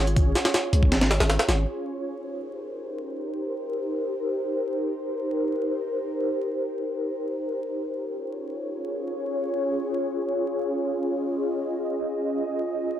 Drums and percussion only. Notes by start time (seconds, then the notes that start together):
0.07 closed hi-hat
0.16 kick, closed hi-hat
0.35 snare, closed hi-hat
0.45 snare, closed hi-hat
0.54 snare, closed hi-hat
0.73 closed hi-hat
0.83 kick
0.92 snare, closed hi-hat
1.01 snare, closed hi-hat
1.11 snare, closed hi-hat
1.20 snare, closed hi-hat
1.30 snare, closed hi-hat
1.39 snare, closed hi-hat
1.49 snare, closed hi-hat